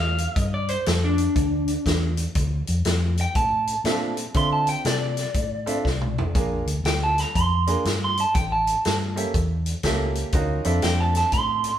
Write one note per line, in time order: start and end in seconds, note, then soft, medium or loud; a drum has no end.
0.00 0.26 E2 medium
0.00 0.38 F5 medium
0.18 closed hi-hat medium
0.36 0.76 G2 medium
0.36 0.52 D#5 medium
0.36 kick loud
0.36 closed hi-hat medium
0.54 0.70 D5 medium
0.68 0.86 C5 loud
0.68 closed hi-hat medium
0.86 1.26 F2 medium
0.86 1.03 A4 medium
0.86 snare loud
0.86 closed hi-hat medium
1.04 2.01 D4 medium
1.18 closed hi-hat medium
1.36 1.76 D2 medium
1.36 kick loud
1.36 closed hi-hat medium
1.68 closed hi-hat medium
1.86 2.26 E2 medium
1.86 kick medium
1.86 snare loud
1.86 closed hi-hat medium
2.17 closed hi-hat medium
2.35 2.61 D2 loud
2.35 kick loud
2.35 closed hi-hat medium
2.67 2.82 F2 medium
2.67 closed hi-hat medium
2.85 3.25 F2 medium
2.85 snare loud
2.85 closed hi-hat medium
3.17 3.36 G5 medium
3.17 closed hi-hat medium
3.35 3.75 A2 medium
3.35 4.33 A5 medium
3.35 kick loud
3.35 closed hi-hat medium
3.67 closed hi-hat medium
3.84 4.24 A#2 medium
3.84 4.14 C4 medium
3.84 4.14 D4 medium
3.84 4.15 E4 medium
3.84 4.15 F4 medium
3.84 4.15 A4 medium
3.84 snare loud
3.84 closed hi-hat medium
4.17 closed hi-hat medium
4.34 4.75 D3 medium
4.34 5.11 C4 medium
4.34 5.11 D4 medium
4.34 5.11 E4 medium
4.34 5.11 F4 medium
4.34 5.11 A4 medium
4.34 4.52 C6 medium
4.34 kick loud
4.34 closed hi-hat medium
4.53 4.69 A5 medium
4.67 4.85 G5 medium
4.67 closed hi-hat medium
4.85 5.24 C3 medium
4.85 6.32 D5 loud
4.85 snare loud
4.85 closed hi-hat medium
5.17 snare soft
5.17 closed hi-hat medium
5.34 5.74 A2 medium
5.34 kick loud
5.34 closed hi-hat medium
5.66 5.83 C4 medium
5.66 5.83 D4 medium
5.66 5.83 E4 medium
5.66 5.83 F4 medium
5.66 5.83 A4 medium
5.66 closed hi-hat medium
5.85 6.25 C2 medium
5.85 kick medium
5.85 snare medium
6.01 mid tom medium
6.18 floor tom loud
6.35 6.61 A#1 medium
6.35 6.64 A#3 medium
6.35 6.64 D4 medium
6.35 6.64 F4 medium
6.35 6.64 G#4 medium
6.35 6.64 A#4 medium
6.35 kick loud
6.35 closed hi-hat medium
6.66 6.81 D2 medium
6.66 closed hi-hat medium
6.84 7.23 D2 medium
6.84 7.01 G5 loud
6.84 snare loud
6.84 closed hi-hat medium
7.03 7.20 A5 medium
7.18 7.35 A#5 medium
7.18 snare soft
7.18 closed hi-hat medium
7.35 7.74 F2 medium
7.35 7.84 C6 medium
7.35 kick loud
7.35 closed hi-hat medium
7.67 7.83 A#3 medium
7.67 7.83 D4 medium
7.67 7.83 F4 medium
7.67 7.83 G#4 medium
7.67 7.83 A#4 medium
7.67 closed hi-hat medium
7.85 8.24 G2 medium
7.85 snare medium
7.85 closed hi-hat medium
8.04 8.19 C6 medium
8.17 8.35 A5 medium
8.17 closed hi-hat medium
8.34 8.74 A1 medium
8.34 8.51 G5 medium
8.34 kick loud
8.34 closed hi-hat medium
8.52 9.00 A5 medium
8.67 closed hi-hat medium
8.85 9.24 G2 medium
8.85 snare loud
8.85 closed hi-hat medium
9.16 9.32 A#3 medium
9.16 9.32 C#4 medium
9.16 9.32 E4 medium
9.16 9.33 G4 medium
9.16 9.32 A4 medium
9.16 closed hi-hat medium
9.34 9.74 E2 medium
9.34 kick loud
9.34 closed hi-hat medium
9.66 closed hi-hat medium
9.83 10.23 C#2 medium
9.83 10.34 A#3 medium
9.83 10.32 C#4 medium
9.83 10.34 E4 medium
9.83 10.34 G4 medium
9.83 10.34 A4 medium
9.83 kick medium
9.83 snare loud
9.83 closed hi-hat medium
10.15 closed hi-hat medium
10.32 10.59 D2 loud
10.32 10.62 C#4 medium
10.32 10.63 D#4 medium
10.32 10.63 F4 medium
10.32 10.63 F#4 medium
10.32 10.63 A#4 medium
10.32 kick loud
10.32 closed hi-hat medium
10.64 10.79 F2 medium
10.64 11.72 C4 medium
10.64 11.72 D4 medium
10.64 11.72 E4 medium
10.64 11.72 F4 medium
10.64 11.72 A4 medium
10.64 closed hi-hat medium
10.82 11.23 F2 loud
10.82 11.00 G5 loud
10.82 snare loud
10.82 closed hi-hat medium
11.00 11.16 A5 medium
11.15 11.33 A5 medium
11.15 snare soft
11.15 closed hi-hat medium
11.32 11.72 A2 medium
11.32 11.79 C6 loud
11.32 kick loud
11.32 closed hi-hat medium
11.64 closed hi-hat medium